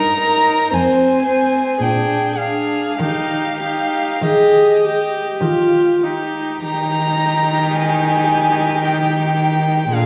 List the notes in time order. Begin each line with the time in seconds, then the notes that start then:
Already playing: G2 D#4 A#4 A#5
0.20 D#4 A#4
0.73 F2 C4 C5 G#5
1.25 C4 C5
1.80 A#2 D4 G#4 G5
2.36 D4 G#4 F5
2.99 D#3 D#4 G4 F5
3.61 D#4 G4
4.22 D#3 G4 G#4 D#5
4.84 G4
5.41 D#3 F4 G4
6.04 D#4 G4
6.62 D#3 D#4 G4 A#5
7.77 G#5
8.85 G5
9.92 A#2 D4 G#4 F5